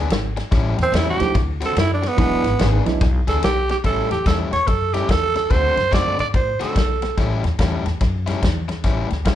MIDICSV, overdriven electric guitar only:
0, 0, Header, 1, 3, 480
1, 0, Start_track
1, 0, Tempo, 416378
1, 598, Time_signature, 4, 2, 24, 8
1, 10779, End_track
2, 0, Start_track
2, 0, Title_t, "Overdriven electric guitar"
2, 0, Program_c, 0, 29
2, 594, Note_on_c, 0, 45, 93
2, 596, Note_on_c, 0, 55, 105
2, 604, Note_on_c, 0, 61, 116
2, 605, Note_on_c, 0, 64, 110
2, 884, Note_off_c, 0, 64, 0
2, 886, Note_off_c, 0, 61, 0
2, 891, Note_off_c, 0, 55, 0
2, 900, Note_off_c, 0, 45, 0
2, 1063, Note_on_c, 0, 45, 90
2, 1074, Note_on_c, 0, 61, 95
2, 1075, Note_on_c, 0, 55, 90
2, 1080, Note_on_c, 0, 64, 99
2, 1365, Note_off_c, 0, 64, 0
2, 1366, Note_off_c, 0, 61, 0
2, 1371, Note_off_c, 0, 55, 0
2, 1374, Note_off_c, 0, 45, 0
2, 1855, Note_on_c, 0, 66, 104
2, 1863, Note_on_c, 0, 60, 105
2, 1868, Note_on_c, 0, 50, 96
2, 1868, Note_on_c, 0, 57, 90
2, 2015, Note_off_c, 0, 50, 0
2, 2022, Note_off_c, 0, 57, 0
2, 2024, Note_off_c, 0, 60, 0
2, 2029, Note_off_c, 0, 66, 0
2, 2513, Note_on_c, 0, 52, 91
2, 2519, Note_on_c, 0, 59, 102
2, 2527, Note_on_c, 0, 62, 100
2, 2528, Note_on_c, 0, 68, 112
2, 2811, Note_off_c, 0, 62, 0
2, 2811, Note_off_c, 0, 68, 0
2, 2817, Note_off_c, 0, 59, 0
2, 2818, Note_off_c, 0, 52, 0
2, 2989, Note_on_c, 0, 52, 80
2, 2995, Note_on_c, 0, 59, 104
2, 2998, Note_on_c, 0, 62, 98
2, 3004, Note_on_c, 0, 68, 109
2, 3282, Note_off_c, 0, 68, 0
2, 3288, Note_off_c, 0, 62, 0
2, 3291, Note_off_c, 0, 59, 0
2, 3296, Note_off_c, 0, 52, 0
2, 3779, Note_on_c, 0, 68, 118
2, 3784, Note_on_c, 0, 62, 93
2, 3788, Note_on_c, 0, 59, 81
2, 3792, Note_on_c, 0, 52, 86
2, 3945, Note_off_c, 0, 52, 0
2, 3948, Note_off_c, 0, 59, 0
2, 3951, Note_off_c, 0, 62, 0
2, 3954, Note_off_c, 0, 68, 0
2, 4429, Note_on_c, 0, 45, 91
2, 4432, Note_on_c, 0, 55, 84
2, 4441, Note_on_c, 0, 61, 97
2, 4442, Note_on_c, 0, 64, 93
2, 4718, Note_off_c, 0, 64, 0
2, 4723, Note_off_c, 0, 61, 0
2, 4727, Note_off_c, 0, 55, 0
2, 4736, Note_off_c, 0, 45, 0
2, 4914, Note_on_c, 0, 45, 82
2, 4916, Note_on_c, 0, 55, 92
2, 4926, Note_on_c, 0, 61, 82
2, 4926, Note_on_c, 0, 64, 90
2, 5209, Note_off_c, 0, 64, 0
2, 5215, Note_off_c, 0, 61, 0
2, 5218, Note_off_c, 0, 45, 0
2, 5219, Note_off_c, 0, 55, 0
2, 5696, Note_on_c, 0, 64, 85
2, 5701, Note_on_c, 0, 61, 87
2, 5703, Note_on_c, 0, 55, 77
2, 5713, Note_on_c, 0, 45, 69
2, 5866, Note_off_c, 0, 45, 0
2, 5867, Note_off_c, 0, 55, 0
2, 5869, Note_off_c, 0, 61, 0
2, 5873, Note_off_c, 0, 64, 0
2, 6343, Note_on_c, 0, 50, 86
2, 6348, Note_on_c, 0, 57, 91
2, 6352, Note_on_c, 0, 60, 91
2, 6357, Note_on_c, 0, 66, 94
2, 6631, Note_off_c, 0, 66, 0
2, 6641, Note_off_c, 0, 60, 0
2, 6644, Note_off_c, 0, 57, 0
2, 6653, Note_off_c, 0, 50, 0
2, 6820, Note_on_c, 0, 50, 81
2, 6826, Note_on_c, 0, 57, 88
2, 6832, Note_on_c, 0, 60, 90
2, 6835, Note_on_c, 0, 66, 85
2, 7114, Note_off_c, 0, 66, 0
2, 7118, Note_off_c, 0, 60, 0
2, 7121, Note_off_c, 0, 57, 0
2, 7132, Note_off_c, 0, 50, 0
2, 7607, Note_on_c, 0, 66, 89
2, 7610, Note_on_c, 0, 60, 85
2, 7619, Note_on_c, 0, 57, 86
2, 7620, Note_on_c, 0, 50, 76
2, 7775, Note_off_c, 0, 50, 0
2, 7779, Note_off_c, 0, 57, 0
2, 7782, Note_off_c, 0, 66, 0
2, 7784, Note_off_c, 0, 60, 0
2, 8276, Note_on_c, 0, 45, 83
2, 8279, Note_on_c, 0, 55, 82
2, 8289, Note_on_c, 0, 61, 103
2, 8294, Note_on_c, 0, 64, 97
2, 8570, Note_off_c, 0, 64, 0
2, 8577, Note_off_c, 0, 61, 0
2, 8579, Note_off_c, 0, 55, 0
2, 8581, Note_off_c, 0, 45, 0
2, 8750, Note_on_c, 0, 45, 90
2, 8755, Note_on_c, 0, 55, 88
2, 8762, Note_on_c, 0, 61, 83
2, 8766, Note_on_c, 0, 64, 92
2, 9049, Note_off_c, 0, 64, 0
2, 9054, Note_off_c, 0, 61, 0
2, 9058, Note_off_c, 0, 45, 0
2, 9060, Note_off_c, 0, 55, 0
2, 9529, Note_on_c, 0, 64, 103
2, 9537, Note_on_c, 0, 61, 90
2, 9543, Note_on_c, 0, 45, 79
2, 9543, Note_on_c, 0, 55, 87
2, 9695, Note_off_c, 0, 45, 0
2, 9701, Note_off_c, 0, 61, 0
2, 9702, Note_off_c, 0, 55, 0
2, 9704, Note_off_c, 0, 64, 0
2, 10193, Note_on_c, 0, 45, 80
2, 10195, Note_on_c, 0, 55, 84
2, 10200, Note_on_c, 0, 61, 97
2, 10203, Note_on_c, 0, 64, 104
2, 10476, Note_off_c, 0, 64, 0
2, 10480, Note_off_c, 0, 61, 0
2, 10484, Note_off_c, 0, 55, 0
2, 10500, Note_off_c, 0, 45, 0
2, 10667, Note_on_c, 0, 45, 75
2, 10672, Note_on_c, 0, 55, 94
2, 10677, Note_on_c, 0, 61, 93
2, 10682, Note_on_c, 0, 64, 86
2, 10779, Note_off_c, 0, 45, 0
2, 10779, Note_off_c, 0, 55, 0
2, 10779, Note_off_c, 0, 61, 0
2, 10779, Note_off_c, 0, 64, 0
2, 10779, End_track
3, 0, Start_track
3, 0, Title_t, "Muted overdriven electric guitar strokes"
3, 113, Note_on_c, 9, 29, 49
3, 228, Note_off_c, 9, 29, 0
3, 424, Note_on_c, 9, 29, 45
3, 539, Note_off_c, 9, 29, 0
3, 897, Note_on_c, 9, 29, 59
3, 1013, Note_off_c, 9, 29, 0
3, 1379, Note_on_c, 9, 29, 46
3, 1494, Note_off_c, 9, 29, 0
3, 1551, Note_on_c, 9, 29, 47
3, 1666, Note_off_c, 9, 29, 0
3, 2029, Note_on_c, 9, 29, 52
3, 2144, Note_off_c, 9, 29, 0
3, 2335, Note_on_c, 9, 29, 52
3, 2450, Note_off_c, 9, 29, 0
3, 2825, Note_on_c, 9, 29, 50
3, 2940, Note_off_c, 9, 29, 0
3, 3296, Note_on_c, 9, 29, 43
3, 3411, Note_off_c, 9, 29, 0
3, 3482, Note_on_c, 9, 29, 53
3, 3598, Note_off_c, 9, 29, 0
3, 3959, Note_on_c, 9, 29, 46
3, 4074, Note_off_c, 9, 29, 0
3, 4262, Note_on_c, 9, 29, 50
3, 4377, Note_off_c, 9, 29, 0
3, 4731, Note_on_c, 9, 29, 52
3, 4847, Note_off_c, 9, 29, 0
3, 5223, Note_on_c, 9, 29, 44
3, 5338, Note_off_c, 9, 29, 0
3, 5395, Note_on_c, 9, 29, 51
3, 5510, Note_off_c, 9, 29, 0
3, 5879, Note_on_c, 9, 29, 43
3, 5995, Note_off_c, 9, 29, 0
3, 6173, Note_on_c, 9, 29, 51
3, 6289, Note_off_c, 9, 29, 0
3, 6645, Note_on_c, 9, 29, 48
3, 6761, Note_off_c, 9, 29, 0
3, 7128, Note_on_c, 9, 29, 44
3, 7243, Note_off_c, 9, 29, 0
3, 7314, Note_on_c, 9, 29, 43
3, 7429, Note_off_c, 9, 29, 0
3, 7789, Note_on_c, 9, 29, 44
3, 7905, Note_off_c, 9, 29, 0
3, 8101, Note_on_c, 9, 29, 49
3, 8216, Note_off_c, 9, 29, 0
3, 8584, Note_on_c, 9, 29, 43
3, 8699, Note_off_c, 9, 29, 0
3, 9062, Note_on_c, 9, 29, 49
3, 9178, Note_off_c, 9, 29, 0
3, 9240, Note_on_c, 9, 29, 49
3, 9355, Note_off_c, 9, 29, 0
3, 9709, Note_on_c, 9, 29, 45
3, 9824, Note_off_c, 9, 29, 0
3, 10011, Note_on_c, 9, 29, 44
3, 10126, Note_off_c, 9, 29, 0
3, 10490, Note_on_c, 9, 29, 45
3, 10605, Note_off_c, 9, 29, 0
3, 10779, End_track
0, 0, End_of_file